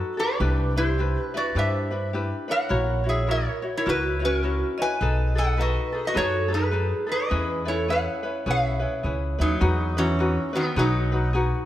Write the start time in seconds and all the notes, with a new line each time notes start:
Already playing: D#4 F#4 A4 B4
0.17 D#4 F#4 G4 A4 B4 D5
0.40 C2 D4 E4 G4 B4
0.76 D4 E4 G4 B4 C5
0.98 D4 E4 G4 B4
1.19 B4
1.34 D4 E4 F#4 B4 D5
1.55 G2 D4 E4 G4 B4 C5 E5
1.91 D4 E4 B4
2.13 D4 E4 G4 B4
2.48 D4 E4 A#4 B4 C#5 F#5
2.69 A#1 E4 F#4 A#4 C#5
3.04 E4 F#4 C#5
3.09 G#4 C#5 E5
3.27 E4 F#4 A#4 C#5
3.31 E4 C#5
3.62 E4 F#4 C#5
3.77 E4 A#4 C#5
3.86 C#2 E4 F#4 A#4 B4 C#5
4.19 E4 F#4 C#5
4.25 C#4 A#4
4.43 E4 F#4 A#4 C#5
4.78 E4 F#4 B4 C#5 D#5 G#5
5.01 B1 D#4 G#4 A4 B4
5.35 D#4 G#4 A4 D#5 F#5
5.57 D#4 G#4 A4 B4 D#5
5.62 F#4
5.93 D#4 G#4 A4
6.05 F#4 B4 D#5
6.14 F#2 D#4 G#4 A4 B4 C#5
6.19 F#4
6.48 D#4 G#4 A4
6.53 D#4 G#4 B4
6.71 D#4 G#4 A4 B4
7.07 D#4 G#4 A4 B4
7.12 G#4 D#5
7.30 E2 C#4 E4 G#4 B4
7.65 C#4 E4 A4 B4 C#5
7.88 C#4 E4 G#4 B4 C#5 F#5
7.92 B4
8.23 C#4 E4 B4
8.46 B1 C#4 E4 G#4 B4 C#5
8.50 G#4 E5
8.80 C#4 E4 B4
9.03 C#2 C#4 E4 G#4 B4
9.39 D#2 F#3 C#4 D#4 E4 B4
9.61 E2 D#4 F#4 G#4 B4
9.97 E3 C#4 D#4 F#4 B4
10.19 D#4 F#4 G#4 B4
10.53 D#3 B3 D#4 F#4 B4
10.76 B1 F#3 D#4 F#4 G#4 B4
11.12 D#4 F#4 B4
11.33 D#4 F#4 G#4 B4